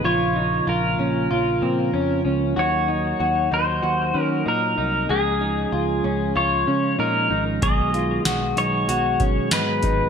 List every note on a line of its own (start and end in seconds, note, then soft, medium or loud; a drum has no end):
0.04 0.60 A#1 loud
0.04 2.54 C#3 medium
0.04 2.55 F3 medium
0.04 5.06 A#3 medium
0.04 2.54 F4 medium
0.04 0.36 F4 loud
0.04 0.70 C#5 medium
0.36 0.67 D#4 medium
0.67 0.95 A#1 loud
0.67 0.99 F4 medium
0.67 2.22 A#4 medium
0.99 1.27 A#1 medium
0.99 1.31 C#4 medium
1.31 1.58 A#1 loud
1.31 1.62 F4 medium
1.62 1.90 A#2 medium
1.62 1.93 C4 medium
1.93 2.22 F2 medium
1.93 2.24 C#4 medium
2.25 2.53 C#2 medium
2.25 2.57 C#4 medium
2.56 3.12 D#2 medium
2.56 5.07 F#3 medium
2.56 5.07 D#4 medium
2.56 2.88 F#4 loud
2.56 3.49 C#5 medium
2.88 3.20 D#4 medium
3.20 3.48 D#2 loud
3.20 3.51 F#4 medium
3.51 3.80 D#2 loud
3.51 3.83 D#4 medium
3.51 4.22 C5 loud
3.83 4.11 D#2 loud
3.83 4.14 F#4 medium
4.14 4.43 D#3 medium
4.14 4.45 C#4 medium
4.22 4.48 A#4 loud
4.46 4.74 A#2 medium
4.46 4.76 D#4 medium
4.46 5.12 A#4 medium
4.78 5.06 C2 medium
4.78 5.09 D#4 medium
5.09 5.65 C#2 loud
5.09 7.60 F3 medium
5.09 10.09 G#3 medium
5.09 7.60 C#4 medium
5.09 5.41 G#4 medium
5.09 6.40 G#4 medium
5.41 5.73 D#4 medium
5.72 6.00 C#2 loud
5.72 6.04 F4 medium
6.04 6.32 C#2 loud
6.04 6.36 C#4 medium
6.36 6.64 C#2 loud
6.36 6.67 F4 medium
6.36 6.99 C#5 loud
6.67 6.95 C#3 medium
6.67 6.98 C#4 medium
6.99 7.27 A#2 medium
6.99 7.29 D#4 medium
6.99 7.43 A#4 medium
7.30 7.58 G#1 medium
7.30 7.62 D#4 medium
7.62 8.18 B1 loud
7.62 10.09 D#3 medium
7.62 10.09 F#3 medium
7.62 10.09 B3 medium
7.62 7.94 G#4 medium
7.62 10.09 G#4 medium
7.62 8.22 D#5 medium
7.62 kick loud
7.62 closed hi-hat medium
7.94 8.25 F4 medium
7.94 closed hi-hat soft
8.25 8.53 B1 loud
8.25 8.57 F#4 medium
8.25 snare loud
8.25 closed hi-hat medium
8.25 tambourine medium
8.57 8.85 B1 medium
8.57 8.88 D#4 medium
8.57 9.55 C#5 loud
8.57 closed hi-hat soft
8.88 9.16 B1 medium
8.88 9.20 F#4 loud
8.88 closed hi-hat medium
9.20 9.48 B2 medium
9.20 9.51 C#4 medium
9.20 kick medium
9.20 closed hi-hat soft
9.51 9.80 G#2 medium
9.51 9.82 D#4 medium
9.51 10.09 B4 medium
9.51 snare loud
9.51 closed hi-hat medium
9.51 tambourine medium
9.83 10.09 G#1 medium
9.83 10.09 D#4 medium
9.83 kick medium
9.83 closed hi-hat medium